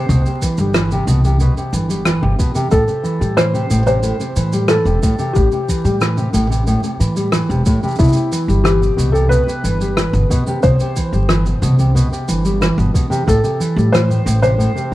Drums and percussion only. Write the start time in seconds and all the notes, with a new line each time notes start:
0.09 kick, shaker
0.26 shaker
0.42 kick, shaker
0.58 shaker
0.74 cross-stick, shaker
0.91 shaker
1.08 shaker
1.24 shaker
1.40 shaker
1.57 shaker
1.73 shaker
1.90 shaker
2.05 cross-stick, shaker
2.39 kick, shaker
2.55 shaker
2.71 kick, shaker
2.88 shaker
3.04 shaker
3.22 shaker
3.37 cross-stick, shaker
3.55 shaker
3.70 shaker
3.87 shaker
4.03 shaker
4.20 shaker
4.36 shaker
4.53 shaker
4.68 cross-stick, shaker
4.86 shaker
5.03 kick, shaker
5.19 shaker
5.35 kick, shaker
5.52 shaker
5.69 kick, shaker
5.85 shaker
6.01 cross-stick, shaker
6.17 shaker
6.34 shaker
6.52 shaker
6.67 shaker
6.83 shaker
7.01 shaker
7.16 shaker
7.32 cross-stick, shaker
7.50 shaker
7.66 kick, shaker
7.83 shaker
7.88 shaker
7.91 shaker
7.95 shaker
7.99 kick, shaker
8.04 shaker
8.08 shaker
8.13 shaker
8.16 shaker
8.32 shaker
8.49 shaker
8.65 cross-stick, shaker
8.83 shaker
8.99 shaker
9.15 shaker
9.32 shaker
9.49 shaker
9.65 shaker
9.81 shaker
9.97 cross-stick, shaker
10.14 shaker
10.31 kick, shaker
10.47 shaker
10.63 kick, shaker
10.80 shaker
10.96 kick, shaker
11.13 shaker
11.29 cross-stick, shaker
11.46 shaker
11.63 shaker
11.79 shaker
11.97 shaker
12.13 shaker
12.29 shaker
12.45 shaker
12.62 cross-stick, shaker
12.79 shaker
12.95 kick, shaker
13.12 shaker
13.28 kick, shaker
13.44 shaker
13.61 shaker
13.78 shaker
13.94 cross-stick, shaker
14.11 shaker
14.27 shaker
14.43 shaker
14.60 shaker
14.77 shaker